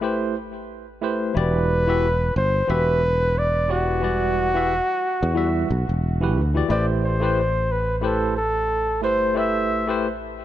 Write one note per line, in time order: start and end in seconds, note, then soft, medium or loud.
0.00 1.30 A1 medium
0.00 0.34 A3 medium
0.00 0.34 E4 medium
0.00 0.34 G4 medium
0.00 0.35 B4 medium
0.00 0.35 C5 loud
1.01 1.32 A3 medium
1.01 1.32 E4 medium
1.01 1.33 G4 medium
1.01 1.33 B4 medium
1.01 1.33 C5 loud
1.34 2.30 E1 loud
1.34 1.83 E3 medium
1.34 1.83 E4 medium
1.34 1.84 F#4 medium
1.34 1.84 G4 medium
1.34 2.33 B4 loud
1.34 1.85 D5 loud
1.87 2.05 E3 loud
1.87 2.06 E4 medium
1.87 2.06 F#4 medium
1.87 2.07 G4 medium
1.87 2.07 E5 loud
2.36 2.61 G1 loud
2.36 2.72 C5 loud
2.67 4.79 E1 medium
2.67 3.00 E3 loud
2.67 3.01 E4 medium
2.67 3.01 F#4 medium
2.67 3.02 G4 medium
2.67 3.40 B4 loud
2.67 3.02 E5 loud
3.38 3.73 D5 loud
3.68 3.99 E3 medium
3.68 3.99 E4 medium
3.68 4.00 F#4 medium
3.68 6.37 F#4 loud
3.68 4.00 G4 medium
3.68 4.00 D5 loud
4.01 4.50 E3 medium
4.01 4.51 G3 medium
4.01 4.50 E4 medium
4.01 4.51 F#4 medium
4.01 4.51 D5 medium
4.54 4.72 E3 loud
4.54 4.73 E4 medium
4.54 4.73 F#4 medium
4.54 4.73 G4 medium
4.54 4.74 E5 loud
5.23 5.63 E2 medium
5.34 5.67 E3 medium
5.34 5.68 G3 medium
5.34 5.68 E4 medium
5.34 5.68 F#4 medium
5.34 5.69 E5 loud
5.70 5.83 B1 medium
5.89 6.37 E1 medium
6.21 6.39 E3 medium
6.21 6.39 E4 medium
6.21 6.40 F#4 medium
6.21 6.40 G4 medium
6.21 6.41 B4 loud
6.37 6.61 D2 medium
6.54 6.67 E3 medium
6.54 6.67 E4 medium
6.54 6.68 F#4 medium
6.54 6.68 G4 medium
6.54 6.68 D5 loud
6.68 9.03 A1 loud
6.68 7.17 A3 medium
6.68 7.17 E4 medium
6.68 7.18 G4 medium
6.68 7.18 B4 medium
6.68 7.18 C5 loud
6.68 6.86 D5 loud
7.05 7.73 C5 medium
7.20 7.39 A3 loud
7.20 7.40 E4 medium
7.20 7.40 G4 medium
7.20 7.40 B4 medium
7.20 7.40 C5 loud
7.72 7.99 B4 medium
7.99 8.34 A3 medium
7.99 8.34 E4 medium
7.99 8.35 G4 medium
7.99 8.06 B4 medium
8.04 8.37 A4 loud
8.04 8.35 B4 medium
8.04 8.36 C5 loud
8.37 8.99 A4 loud
9.01 9.70 G1 medium
9.01 9.32 A3 medium
9.01 9.33 E4 medium
9.01 9.33 G4 medium
9.01 9.33 B4 medium
9.01 9.39 C5 loud
9.01 9.34 C5 medium
9.34 9.83 A3 medium
9.34 9.84 E4 medium
9.34 9.84 G4 medium
9.34 9.84 B4 medium
9.34 9.85 C5 medium
9.34 10.04 E5 loud
9.70 10.45 A1 loud
9.87 10.06 A3 loud
9.87 10.06 E4 medium
9.87 10.06 G4 medium
9.87 10.07 B4 loud
9.87 10.07 C5 loud